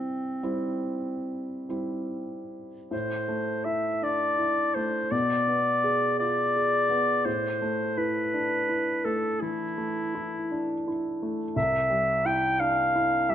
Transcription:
Already playing: G3 C4 E4
0.43 G3 C4 E4
1.69 G3 C4 E4
2.91 A2 C5
3.28 A3
3.65 E4 E5
4.02 D4 D5
4.39 E4
4.75 A3 C5
5.11 B2 D5
5.48 B3
5.84 G#4
6.20 F4 D5
6.56 G#4
6.90 B3
7.25 A2 C5
7.62 A3
7.98 E4 B4
8.34 D4
8.69 E4
9.05 A3 A4
9.41 E3 E4
9.78 A3
10.15 E4
10.52 D4
10.88 E4
11.23 A3
11.56 C2 E5
11.90 G3
12.25 E4 G5
12.60 D4 F5
12.95 E4
13.29 G3 E5

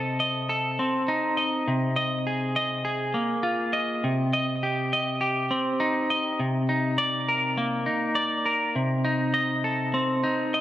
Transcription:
Already playing: C3 A4 D#5
0.20 D#5
0.49 A4
0.79 C4
1.08 D#4
1.37 D#5
1.68 C3
1.96 D#5
2.27 G#4
2.56 D#5
2.85 G#4
3.14 A#3
3.43 F4
3.73 D#5
4.04 C3
4.33 D#5
4.63 G4
4.93 D#5
5.21 G4
5.51 C4
5.80 D#4
6.10 D#5
6.40 C3
6.69 D#4
6.98 D5
7.28 A#4
7.58 A#3
7.86 D#4
8.15 D5
8.46 A#4
8.76 C3
9.05 D#4
9.34 D#5
9.64 A4
9.94 C4
10.23 D#4
10.54 D#5

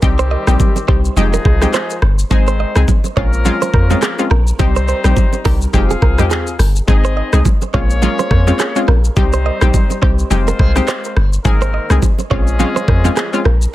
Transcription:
0.02 C2 D#3 G3 C4 D#4 G4, kick, low conga, shaker
0.19 C5, shaker
0.31 D#5
0.47 A#1 G3 C4 D#4 G4, cross-stick, high bongo, shaker
0.60 kick, high bongo, low conga, shaker
0.76 low bongo, shaker
0.88 C2 G3 C4 D#4 G4 C5, kick
1.05 shaker
1.17 F1 F3 G#3 C4 D#4 G4 G#4, low conga, shaker
1.34 A#4, low bongo, shaker
1.45 C2 G#4, kick, cross-stick
1.62 G#3 C4 D#4 G4, cross-stick, low bongo, shaker
1.74 C5, clap, high bongo, shaker
1.90 shaker
2.02 G1, cross-stick
2.19 shaker
2.31 G#1 G#3 C4 D#4 G#4 C5, kick, low conga, shaker
2.47 C5, shaker
2.60 D#5
2.76 C2 G#3 C4 D#4 G#4, cross-stick, high bongo, shaker
2.88 kick, high bongo, low conga, shaker
3.04 low bongo, shaker
3.16 A#1 F3 G#3 A#3 C4 C#4 F4 A#4 C#5, kick
3.33 shaker
3.45 G#3 C4 C#4 F4, low conga, shaker
3.62 C5, low bongo, shaker
3.74 F2 A#4, kick, cross-stick
3.90 G#3 C4 C#4 F4, low bongo, shaker
4.02 G#4, cross-stick, clap, high bongo, shaker
4.19 G#3 C4 C#4 F4, shaker
4.31 A#1 A#4, cross-stick
4.47 shaker
4.59 C2 G3 C4 D#4 G4 C5, kick, low conga, shaker
4.76 C5, shaker
4.88 C5, shaker
5.04 A#1 G3 C4 D#4 G4, cross-stick, high bongo, shaker
5.16 kick, high bongo, low conga, shaker
5.33 low bongo, shaker
5.45 C2 G3 C4 D#4 G4 A#4, kick, open hi-hat
5.62 shaker
5.73 F1 G#3 C4 D#4 F4 G4 G#4 F5, kick, low conga, shaker
5.91 G#4, low bongo, shaker
6.02 C2 A#4, kick, cross-stick
6.18 G#3 C4 D#4 G4, cross-stick, mid tom, low bongo, shaker
6.31 G#4, clap, high bongo, shaker
6.47 shaker
6.59 G1, cross-stick, open hi-hat, shaker
6.76 shaker
6.88 G#1 G#3 C4 D#4 G#4 D#5, kick, low conga, shaker
7.05 C5, shaker
7.17 D#5
7.33 C2 G#3 C4 D#4 G#4, cross-stick, high bongo, shaker
7.45 kick, high bongo, low conga, shaker
7.62 low bongo, shaker
7.74 A#1 G#3 A#3 C4 C#4 F4 G#4 C#5, kick
7.90 shaker
8.02 G#3 A#3 C#4 F4, low conga, shaker
8.19 C5, low bongo, shaker
8.31 F2 A#4, kick, cross-stick
8.47 G#3 C4 C#4 F4, low bongo, shaker
8.59 G#4, cross-stick, clap, high bongo, shaker
8.76 G#3 C4 C#4 F4, shaker
8.88 A#1 A#4, cross-stick
9.05 shaker
9.16 C2 G3 C4 D#4 G4 C5, kick, low conga, shaker
9.33 C5, shaker
9.46 D#5
9.61 A#1 G3 C4 D#4 G4, cross-stick, high bongo, shaker
9.74 kick, high bongo, low conga, shaker
9.90 low bongo, shaker
10.02 C2 G3 C4 D#4 G4 C5, kick
10.19 shaker
10.30 F1 G#3 C4 D#4 F4 G4 C5, low conga, shaker
10.48 A#4, low bongo, shaker
10.59 C2 G#4, kick, cross-stick
10.76 G#3 C4 D#4 G4, cross-stick, low bongo, shaker
10.88 C5, clap, high bongo, shaker
11.04 shaker
11.17 G1, cross-stick
11.33 shaker
11.45 G#1 D#3 G#3 A#3 C4 D#4 G#4 A#4, kick, low conga, shaker
11.62 C5, shaker
11.74 D#5
11.90 C2 G#3 C4 D#4 G#4, cross-stick, high bongo, shaker
12.02 kick, high bongo, low conga, shaker
12.18 low bongo, shaker
12.30 A#1 F3 G#3 C4 C#4 F4 G#4 C#5, kick
12.47 shaker
12.59 G#3 C4 C#4 F4, low conga, shaker
12.76 C5, low bongo, shaker
12.88 F2 A#4, kick, cross-stick
13.04 G#3 C4 C#4 F4, low bongo, shaker
13.17 G#4, cross-stick, clap, high bongo, shaker
13.33 G#3 C4 C#4 F4, shaker
13.45 A#1 A#4, cross-stick
13.62 shaker

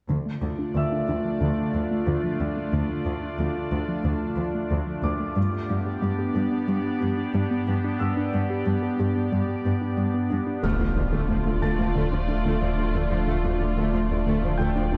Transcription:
0.09 D2 D3 A3 D4 F4 D5
0.26 A3
0.42 D2
0.59 D4
0.75 D2 D3 E5 E6
0.92 D4
1.08 D2 D4
1.25 F3
1.42 D2 D3
1.74 D2 F3
1.91 A3
2.07 D2 D3
2.24 F3
2.40 D2 A3
2.57 A3
2.73 D2 D3
2.90 A3
3.06 D2
3.23 D4
3.39 D2 D3
3.56 D4
3.72 D2 D4
3.89 F3
4.05 D2 D3
4.37 D2 F3
4.55 A3
4.71 D2 D3
4.87 F3
5.03 D2 A3 D6
5.20 A3
5.36 G2 G3 B3 D4 G4 D5
5.53 D4
5.70 G2
5.86 G4
6.02 G2 G3
6.19 G4
6.35 G2 G4
6.52 B3
6.68 G2 G3
7.01 G2 B3
7.18 D4
7.34 G2 G3
7.51 B3
7.67 G2 D4
7.84 D4
7.99 G2 G3 E6
8.17 D4
8.34 G2
8.50 G4
8.66 G2 G3
8.83 G4
8.99 G2 G4
9.16 B3
9.32 G2 G3
9.65 G2 B3
9.81 D4
9.97 G2 G3
10.14 B3
10.30 G2 D4
10.47 D4
10.62 D1 D2 D3 A3 D4 F4 D5 F6, impact
10.80 D2 F3 A3
10.96 D2 D3 A3
11.12 D2 D3 A3
11.29 D2 F3 A3
11.46 D2 D3 A3
11.61 D2 D3 A3 A5 A6
11.79 D2 F3 A3
11.96 D2 D3 A3
12.12 D2 F3 D4
12.29 D2 D3 D4
12.45 D2 D3 A3
12.61 D2 F3
12.78 D2 D3 A3
12.95 D2 D3 A3
13.11 D2 F3
13.27 D2 D3 A3
13.44 D2 F3 A3
13.61 D2 D3 A3
13.77 D2 D3 A3
13.93 D2 F3 A3
14.10 D2 D3 A3
14.26 D2 D3 A3
14.43 D2 F3 A3
14.58 D2 D3 A3 G5 G6
14.76 D2 F3 D4
14.92 D2 D3 D4

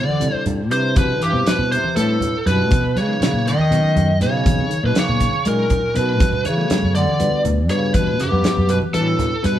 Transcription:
Already playing: D5
0.00 D3
0.09 muted fretless electric bass stroke, high conga
0.20 C3 G3 C4 D4 E4 A4, closed hi-hat
0.34 muted fretless electric bass stroke, low conga
0.46 G2, closed hi-hat, low conga
0.70 C3 G3 C4 D4 E4 B4 C5, closed hi-hat
0.96 B2 B4, kick, closed hi-hat, high conga
1.21 G2 E3 G4, closed hi-hat
1.32 B2 G3 C4 D4 E4 C5
1.46 B2 B4, muted fretless electric bass stroke, snare, closed hi-hat
1.59 B2, low conga
1.72 C3 C5, closed hi-hat
1.84 muted fretless electric bass stroke, high conga
1.95 A2 G3 A3 C4 D4 E4 A4 B4, closed hi-hat
2.09 low conga
2.21 closed hi-hat, low conga
2.45 F#2 G3 C4 D4 E4 G4 B4, closed hi-hat
2.50 B2
2.71 B2, kick, closed hi-hat, high conga
2.83 low conga
2.96 C#3 G#3 C#5, closed hi-hat
3.08 F#3 B3 C#4 D#4 A#4
3.21 B2 C#3 C#5, snare, closed hi-hat
3.33 A#2
3.47 D#3 D#5, snare, closed hi-hat
3.58 muted fretless electric bass stroke, high conga
3.71 B2 F#3 B3 C#4 D#4 A#4, snare, closed hi-hat
3.84 muted fretless electric bass stroke, low conga
3.96 F#2, closed hi-hat, low conga
4.21 B2 C#3 F#3 B3 C#4 D#4 G#4 C#5, closed hi-hat
4.46 kick, closed hi-hat, high conga
4.59 low conga
4.71 D#3, closed hi-hat, low conga
4.83 A#2 B2 F#3 B3 C#4 D#4 A#4 B4
4.95 C#3 C#5, muted fretless electric bass stroke, snare, closed hi-hat, low conga
5.09 A#2, low conga
5.20 kick, closed hi-hat
5.33 muted fretless electric bass stroke, high conga, low conga
5.45 A#2 F#3 G#3 C#4 D#4 A#4, closed hi-hat, low conga
5.70 kick, closed hi-hat, low conga
5.83 low conga
5.94 B2 F#3 B3 C#4 D#4 A#4 B4, closed hi-hat
6.20 G2, kick, closed hi-hat, high conga
6.33 low conga
6.45 C#3 E3 C#5, closed hi-hat
6.57 G3 A3 B3 F#4 A4
6.70 G2, snare, closed hi-hat
6.83 F#2, low conga
6.95 D3 D5, closed hi-hat
7.08 muted fretless electric bass stroke, high conga
7.19 G2 G3 B3 D4 F#4 B4, closed hi-hat
7.33 muted fretless electric bass stroke, low conga
7.45 D2, closed hi-hat, low conga
7.69 G2 C#3 G3 B3 D4 F#4 B4 C#5, closed hi-hat
7.94 B2 B4, kick, closed hi-hat, high conga
8.07 low conga
8.20 G2 C#3 G4, snare, closed hi-hat
8.31 F#2 G3 B3 D4 B4 F#5
8.44 muted fretless electric bass stroke, snare, closed hi-hat
8.57 F#2, low conga
8.69 B2 B4, closed hi-hat
8.82 muted fretless electric bass stroke, high conga
8.93 A2 E3 G3 B3 D4 F#4 A4 B4, closed hi-hat
9.19 snare, closed hi-hat, low conga
9.43 G2 G3 B3 D4 F#4 B4, closed hi-hat
9.47 B2

